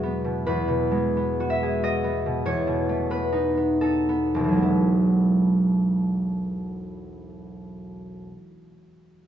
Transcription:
0, 0, Header, 1, 2, 480
1, 0, Start_track
1, 0, Key_signature, 4, "major"
1, 0, Tempo, 673401
1, 334, Time_signature, 3, 2, 24, 8
1, 1297, Tempo, 636943
1, 2257, Tempo, 715137
1, 2737, Tempo, 811908
1, 3217, Tempo, 757576
1, 4177, Tempo, 778210
1, 6112, End_track
2, 0, Start_track
2, 0, Title_t, "Harp"
2, 0, Program_c, 0, 46
2, 0, Note_on_c, 0, 40, 49
2, 0, Note_on_c, 0, 47, 40
2, 0, Note_on_c, 0, 54, 47
2, 0, Note_on_c, 0, 56, 39
2, 0, Note_on_c, 0, 64, 40
2, 0, Note_on_c, 0, 66, 38
2, 0, Note_on_c, 0, 68, 38
2, 0, Note_on_c, 0, 71, 50
2, 0, Note_on_c, 0, 76, 58
2, 24, Note_on_c, 0, 59, 38
2, 166, Note_off_c, 0, 47, 0
2, 174, Note_on_c, 0, 47, 35
2, 322, Note_off_c, 0, 71, 0
2, 327, Note_off_c, 0, 40, 0
2, 331, Note_on_c, 0, 71, 65
2, 335, Note_on_c, 0, 40, 42
2, 350, Note_off_c, 0, 47, 0
2, 484, Note_on_c, 0, 47, 38
2, 584, Note_off_c, 0, 54, 0
2, 641, Note_off_c, 0, 56, 0
2, 650, Note_on_c, 0, 56, 39
2, 823, Note_off_c, 0, 59, 0
2, 832, Note_on_c, 0, 59, 39
2, 989, Note_off_c, 0, 66, 0
2, 998, Note_on_c, 0, 66, 44
2, 1059, Note_off_c, 0, 76, 0
2, 1068, Note_on_c, 0, 76, 67
2, 1152, Note_off_c, 0, 68, 0
2, 1161, Note_on_c, 0, 68, 42
2, 1299, Note_off_c, 0, 66, 0
2, 1306, Note_on_c, 0, 66, 42
2, 1309, Note_on_c, 0, 75, 74
2, 1455, Note_off_c, 0, 59, 0
2, 1464, Note_on_c, 0, 59, 41
2, 1488, Note_off_c, 0, 64, 0
2, 1619, Note_off_c, 0, 47, 0
2, 1628, Note_on_c, 0, 47, 37
2, 1767, Note_off_c, 0, 40, 0
2, 1775, Note_on_c, 0, 40, 46
2, 1779, Note_on_c, 0, 73, 66
2, 1793, Note_off_c, 0, 76, 0
2, 1800, Note_off_c, 0, 47, 0
2, 1938, Note_on_c, 0, 47, 39
2, 2104, Note_on_c, 0, 57, 39
2, 2115, Note_off_c, 0, 75, 0
2, 2255, Note_off_c, 0, 59, 0
2, 2259, Note_off_c, 0, 71, 0
2, 2264, Note_on_c, 0, 59, 35
2, 2267, Note_on_c, 0, 71, 65
2, 2411, Note_on_c, 0, 63, 38
2, 2570, Note_off_c, 0, 59, 0
2, 2578, Note_on_c, 0, 59, 34
2, 2735, Note_off_c, 0, 63, 0
2, 2738, Note_on_c, 0, 69, 51
2, 2742, Note_on_c, 0, 63, 35
2, 2895, Note_off_c, 0, 59, 0
2, 2902, Note_on_c, 0, 59, 33
2, 3054, Note_on_c, 0, 28, 34
2, 3060, Note_off_c, 0, 47, 0
2, 3067, Note_on_c, 0, 47, 26
2, 3084, Note_on_c, 0, 35, 30
2, 3109, Note_on_c, 0, 52, 28
2, 3136, Note_on_c, 0, 54, 29
2, 3155, Note_off_c, 0, 56, 0
2, 3163, Note_on_c, 0, 56, 28
2, 3183, Note_off_c, 0, 59, 0
2, 3190, Note_on_c, 0, 59, 29
2, 3219, Note_on_c, 0, 64, 35
2, 3237, Note_off_c, 0, 40, 0
2, 3237, Note_off_c, 0, 69, 0
2, 3238, Note_off_c, 0, 73, 0
2, 3239, Note_off_c, 0, 47, 0
2, 3239, Note_off_c, 0, 63, 0
2, 3241, Note_off_c, 0, 57, 0
2, 3792, Note_off_c, 0, 68, 0
2, 3921, Note_off_c, 0, 66, 0
2, 4715, Note_off_c, 0, 71, 0
2, 5244, Note_off_c, 0, 59, 0
2, 5274, Note_off_c, 0, 64, 0
2, 5311, Note_off_c, 0, 56, 0
2, 5437, Note_off_c, 0, 54, 0
2, 5478, Note_off_c, 0, 28, 0
2, 5509, Note_off_c, 0, 35, 0
2, 5536, Note_off_c, 0, 52, 0
2, 6112, End_track
0, 0, End_of_file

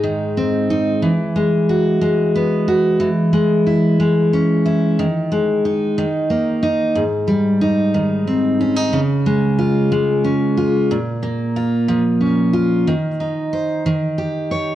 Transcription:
0, 0, Header, 1, 2, 480
1, 0, Start_track
1, 0, Key_signature, -4, "major"
1, 0, Tempo, 657174
1, 756, Time_signature, 6, 3, 24, 8
1, 10773, End_track
2, 0, Start_track
2, 0, Title_t, "Steel-string acoustic guitar"
2, 0, Program_c, 0, 25
2, 0, Note_on_c, 0, 44, 56
2, 0, Note_on_c, 0, 56, 41
2, 0, Note_on_c, 0, 63, 44
2, 27, Note_on_c, 0, 51, 48
2, 273, Note_on_c, 0, 60, 43
2, 505, Note_off_c, 0, 63, 0
2, 514, Note_on_c, 0, 63, 49
2, 745, Note_off_c, 0, 51, 0
2, 747, Note_on_c, 0, 52, 58
2, 753, Note_off_c, 0, 44, 0
2, 803, Note_off_c, 0, 60, 0
2, 803, Note_off_c, 0, 63, 0
2, 989, Note_off_c, 0, 56, 0
2, 992, Note_on_c, 0, 56, 45
2, 1236, Note_on_c, 0, 66, 46
2, 1468, Note_off_c, 0, 56, 0
2, 1471, Note_on_c, 0, 56, 51
2, 1720, Note_on_c, 0, 59, 45
2, 1946, Note_off_c, 0, 66, 0
2, 1955, Note_on_c, 0, 66, 50
2, 2180, Note_off_c, 0, 52, 0
2, 2189, Note_on_c, 0, 52, 60
2, 2246, Note_off_c, 0, 66, 0
2, 2248, Note_off_c, 0, 59, 0
2, 2429, Note_off_c, 0, 56, 0
2, 2432, Note_on_c, 0, 56, 44
2, 2678, Note_on_c, 0, 64, 43
2, 2911, Note_off_c, 0, 56, 0
2, 2920, Note_on_c, 0, 56, 51
2, 3164, Note_on_c, 0, 61, 43
2, 3392, Note_off_c, 0, 64, 0
2, 3401, Note_on_c, 0, 64, 52
2, 3637, Note_off_c, 0, 52, 0
2, 3645, Note_on_c, 0, 51, 60
2, 3689, Note_off_c, 0, 56, 0
2, 3690, Note_off_c, 0, 64, 0
2, 3691, Note_off_c, 0, 61, 0
2, 3884, Note_on_c, 0, 56, 42
2, 4129, Note_on_c, 0, 63, 43
2, 4365, Note_off_c, 0, 51, 0
2, 4368, Note_on_c, 0, 51, 58
2, 4412, Note_off_c, 0, 56, 0
2, 4602, Note_on_c, 0, 58, 44
2, 4837, Note_off_c, 0, 63, 0
2, 4840, Note_on_c, 0, 63, 48
2, 5079, Note_on_c, 0, 44, 59
2, 5130, Note_off_c, 0, 63, 0
2, 5131, Note_off_c, 0, 58, 0
2, 5134, Note_off_c, 0, 51, 0
2, 5314, Note_on_c, 0, 55, 42
2, 5560, Note_on_c, 0, 63, 44
2, 5800, Note_on_c, 0, 51, 50
2, 6042, Note_on_c, 0, 60, 46
2, 6282, Note_off_c, 0, 63, 0
2, 6285, Note_on_c, 0, 61, 52
2, 6400, Note_off_c, 0, 61, 0
2, 6400, Note_on_c, 0, 63, 40
2, 6516, Note_off_c, 0, 51, 0
2, 6519, Note_on_c, 0, 49, 59
2, 6522, Note_off_c, 0, 44, 0
2, 6567, Note_off_c, 0, 55, 0
2, 6570, Note_off_c, 0, 63, 0
2, 6571, Note_off_c, 0, 60, 0
2, 6764, Note_on_c, 0, 56, 46
2, 7001, Note_on_c, 0, 65, 44
2, 7233, Note_off_c, 0, 56, 0
2, 7242, Note_on_c, 0, 56, 51
2, 7480, Note_on_c, 0, 61, 46
2, 7719, Note_off_c, 0, 65, 0
2, 7722, Note_on_c, 0, 65, 51
2, 7962, Note_off_c, 0, 49, 0
2, 7968, Note_on_c, 0, 46, 61
2, 8010, Note_off_c, 0, 61, 0
2, 8011, Note_off_c, 0, 56, 0
2, 8011, Note_off_c, 0, 65, 0
2, 8200, Note_on_c, 0, 58, 45
2, 8444, Note_on_c, 0, 65, 50
2, 8679, Note_on_c, 0, 53, 51
2, 8917, Note_on_c, 0, 61, 46
2, 9147, Note_off_c, 0, 65, 0
2, 9155, Note_on_c, 0, 65, 50
2, 9400, Note_off_c, 0, 53, 0
2, 9404, Note_off_c, 0, 46, 0
2, 9404, Note_on_c, 0, 51, 62
2, 9446, Note_off_c, 0, 65, 0
2, 9447, Note_off_c, 0, 61, 0
2, 9448, Note_off_c, 0, 58, 0
2, 9644, Note_on_c, 0, 63, 43
2, 9882, Note_on_c, 0, 72, 45
2, 10114, Note_off_c, 0, 51, 0
2, 10123, Note_on_c, 0, 51, 58
2, 10169, Note_off_c, 0, 63, 0
2, 10169, Note_off_c, 0, 72, 0
2, 10357, Note_on_c, 0, 67, 44
2, 10599, Note_on_c, 0, 73, 50
2, 10773, Note_off_c, 0, 51, 0
2, 10773, Note_off_c, 0, 67, 0
2, 10773, Note_off_c, 0, 73, 0
2, 10773, End_track
0, 0, End_of_file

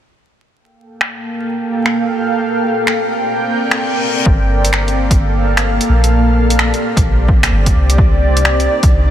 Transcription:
0, 0, Header, 1, 5, 480
1, 0, Start_track
1, 0, Key_signature, -2, "minor"
1, 0, Tempo, 465116
1, 561, Time_signature, 4, 2, 24, 8
1, 9396, End_track
2, 0, Start_track
2, 0, Title_t, "Ambient pad"
2, 0, Program_c, 0, 92
2, 560, Note_on_c, 0, 77, 67
2, 561, Note_on_c, 0, 58, 72
2, 562, Note_on_c, 0, 69, 67
2, 562, Note_on_c, 0, 79, 82
2, 2461, Note_off_c, 0, 77, 0
2, 2462, Note_off_c, 0, 58, 0
2, 2462, Note_off_c, 0, 69, 0
2, 2462, Note_off_c, 0, 79, 0
2, 2478, Note_on_c, 0, 79, 88
2, 2479, Note_on_c, 0, 60, 77
2, 2480, Note_on_c, 0, 74, 68
2, 2481, Note_on_c, 0, 70, 70
2, 4380, Note_off_c, 0, 79, 0
2, 4381, Note_off_c, 0, 60, 0
2, 4382, Note_off_c, 0, 70, 0
2, 4382, Note_off_c, 0, 74, 0
2, 4392, Note_on_c, 0, 58, 78
2, 4393, Note_on_c, 0, 77, 85
2, 4395, Note_on_c, 0, 69, 73
2, 6297, Note_off_c, 0, 58, 0
2, 6298, Note_off_c, 0, 77, 0
2, 6299, Note_off_c, 0, 69, 0
2, 6318, Note_on_c, 0, 60, 79
2, 6319, Note_on_c, 0, 67, 72
2, 6319, Note_on_c, 0, 74, 86
2, 8220, Note_off_c, 0, 60, 0
2, 8221, Note_off_c, 0, 67, 0
2, 8240, Note_on_c, 0, 63, 74
2, 8241, Note_on_c, 0, 58, 78
2, 9396, Note_off_c, 0, 58, 0
2, 9396, Note_off_c, 0, 63, 0
2, 9396, Note_off_c, 0, 74, 0
2, 9396, End_track
3, 0, Start_track
3, 0, Title_t, "808-style bass"
3, 0, Program_c, 1, 38
3, 4396, Note_on_c, 1, 31, 96
3, 5252, Note_off_c, 1, 31, 0
3, 5269, Note_on_c, 1, 31, 87
3, 5972, Note_off_c, 1, 31, 0
3, 6078, Note_on_c, 1, 34, 84
3, 6933, Note_off_c, 1, 34, 0
3, 7189, Note_on_c, 1, 34, 87
3, 7747, Note_off_c, 1, 34, 0
3, 7753, Note_on_c, 1, 31, 95
3, 7983, Note_off_c, 1, 31, 0
3, 8000, Note_on_c, 1, 36, 82
3, 8949, Note_off_c, 1, 36, 0
3, 9113, Note_on_c, 1, 36, 88
3, 9396, Note_off_c, 1, 36, 0
3, 9396, End_track
4, 0, Start_track
4, 0, Title_t, "Reverse cymbal"
4, 0, Program_c, 2, 119
4, 3441, Note_on_c, 2, 60, 70
4, 4401, Note_off_c, 2, 60, 0
4, 9396, End_track
5, 0, Start_track
5, 0, Title_t, "Drums"
5, 1041, Note_on_c, 9, 26, 92
5, 1144, Note_off_c, 9, 26, 0
5, 1916, Note_on_c, 9, 26, 94
5, 2020, Note_off_c, 9, 26, 0
5, 2962, Note_on_c, 9, 26, 95
5, 3066, Note_off_c, 9, 26, 0
5, 3833, Note_on_c, 9, 26, 98
5, 3936, Note_off_c, 9, 26, 0
5, 4397, Note_on_c, 9, 36, 109
5, 4500, Note_off_c, 9, 36, 0
5, 4794, Note_on_c, 9, 42, 54
5, 4878, Note_on_c, 9, 26, 96
5, 4898, Note_off_c, 9, 42, 0
5, 4981, Note_off_c, 9, 26, 0
5, 5035, Note_on_c, 9, 42, 29
5, 5138, Note_off_c, 9, 42, 0
5, 5269, Note_on_c, 9, 36, 101
5, 5272, Note_on_c, 9, 42, 55
5, 5372, Note_off_c, 9, 36, 0
5, 5375, Note_off_c, 9, 42, 0
5, 5751, Note_on_c, 9, 26, 104
5, 5751, Note_on_c, 9, 42, 55
5, 5854, Note_off_c, 9, 26, 0
5, 5854, Note_off_c, 9, 42, 0
5, 5994, Note_on_c, 9, 42, 46
5, 6097, Note_off_c, 9, 42, 0
5, 6232, Note_on_c, 9, 42, 54
5, 6335, Note_off_c, 9, 42, 0
5, 6712, Note_on_c, 9, 42, 55
5, 6801, Note_on_c, 9, 26, 98
5, 6815, Note_off_c, 9, 42, 0
5, 6904, Note_off_c, 9, 26, 0
5, 6953, Note_on_c, 9, 42, 30
5, 7057, Note_off_c, 9, 42, 0
5, 7190, Note_on_c, 9, 36, 103
5, 7194, Note_on_c, 9, 42, 55
5, 7293, Note_off_c, 9, 36, 0
5, 7297, Note_off_c, 9, 42, 0
5, 7517, Note_on_c, 9, 36, 99
5, 7621, Note_off_c, 9, 36, 0
5, 7670, Note_on_c, 9, 26, 108
5, 7670, Note_on_c, 9, 42, 56
5, 7773, Note_off_c, 9, 26, 0
5, 7773, Note_off_c, 9, 42, 0
5, 7909, Note_on_c, 9, 42, 46
5, 7910, Note_on_c, 9, 36, 60
5, 8012, Note_off_c, 9, 42, 0
5, 8014, Note_off_c, 9, 36, 0
5, 8150, Note_on_c, 9, 42, 55
5, 8239, Note_on_c, 9, 36, 123
5, 8253, Note_off_c, 9, 42, 0
5, 8342, Note_off_c, 9, 36, 0
5, 8635, Note_on_c, 9, 42, 56
5, 8721, Note_on_c, 9, 26, 100
5, 8738, Note_off_c, 9, 42, 0
5, 8824, Note_off_c, 9, 26, 0
5, 8873, Note_on_c, 9, 42, 31
5, 8977, Note_off_c, 9, 42, 0
5, 9111, Note_on_c, 9, 42, 55
5, 9113, Note_on_c, 9, 36, 104
5, 9215, Note_off_c, 9, 42, 0
5, 9216, Note_off_c, 9, 36, 0
5, 9396, End_track
0, 0, End_of_file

